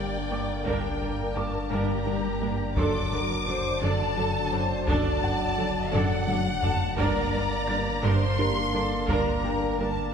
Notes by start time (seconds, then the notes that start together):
Already playing: G1 D3 G3 A#3 D4 A#4 D5 G5 C6
0.30 G1 G2 A#3 D4 A#4 D6
0.66 G1 G2 G3 D4 A#4 G5, taiko
1.00 G1 G2 A#3 D4 A#4
1.36 G1 G2 A#3 D4 A#4 A5 D6
1.71 G1 G2 G3 D4 G4 A#4 A#5
2.06 G1 G2 G3 D4 A#4
2.42 G1 G2 A#3 D4 A#4
2.76 F#1 F#2 D3 F#3 D4 A4 D5 A5 C6 D6, taiko
3.11 F#1 F#2 F#3 D4 F#4 A#4
3.47 F#1 F#2 F#3 D4 A4 C5
3.81 F#1 F#2 D3 D4 A4 D5 A5
4.17 F#1 F#2 F#3 A3 D4 A4
4.52 F#1 F#2 F#3 D4 A4 C5
4.87 F#1 F#2 D3 D4 A4 D5 A5, taiko
5.22 F#1 F#2 F#3 A3 D4 F#5
5.57 F#1 F#2 F#3 D4 A4
5.92 F#1 F#2 D3 D4 A4 D5 F#5, taiko low-mid
6.27 F#1 F#2 F#3 A3 D4 A4, taiko high
6.62 F#1 F#2 F#3 D4 A4 A5, taiko low
6.97 G1 G2 D3 G3 A#3 D4 A#4 D5 A#5, taiko
7.33 G1 G2 A#3 D4 A#4
7.67 G1 G2 A#3 D4 A#4 A6
8.03 G1 G2 G3 D4 A#4 C5 C6
8.38 G1 G2 G3 D4 A#4
8.73 G1 G2 A#3 D4 A4
9.08 G1 G2 G3 D4 A#4 A#5, taiko
9.43 G1 G2 A#3 D4 A#4 G5
9.78 G1 G2 A#3 D4 A#4 A5